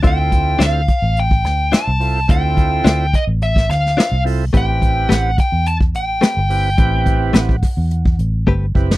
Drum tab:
HH |x-x-x-x-x-x-x-o-|x-x-x-x-x-x-x-o-|x-x-x-x-x-x-x-o-|x-x-x-o-x-x-----|
SD |----o-----o-o---|----o----oooo---|----o-------o---|----o----------o|
BD |o-o---o--o------|o-o---o--o------|o-o---o--o------|o-o--oo--o--o-o-|